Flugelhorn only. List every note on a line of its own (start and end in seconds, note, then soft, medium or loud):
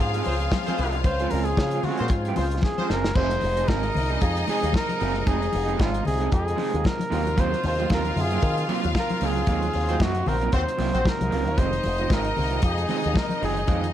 0.01 0.79 G#4 medium
1.06 1.32 C5 loud
1.31 1.46 A#4 loud
1.45 1.86 G#4 loud
1.84 2.13 F#4 medium
2.11 2.63 F4 medium
2.63 2.92 G#4 loud
2.91 3.17 A#4 loud
3.15 3.69 C5 loud
3.68 4.23 A#4 loud
4.21 4.47 G#4 loud
4.49 4.73 G#4 loud
4.75 5.29 A#4 loud
5.27 5.82 G#4 loud
5.81 6.06 F4 loud
6.06 6.30 G#4 loud
6.33 6.88 G#4 medium
6.87 7.41 A#4 loud
7.40 7.65 C5 loud
7.67 7.90 C5 loud
7.93 8.22 A#4 loud
8.21 8.70 G#4 medium
8.99 9.27 A#4 loud
9.25 10.04 G#4 loud
10.03 10.29 F#4 loud
10.28 10.53 A#4 loud
10.55 11.10 C5 loud
11.08 11.60 A#4 loud
11.58 12.15 C5 loud
12.13 12.64 A#4 loud
12.64 13.19 G#4 medium
13.17 13.43 A#4 loud
13.44 13.92 G#4 medium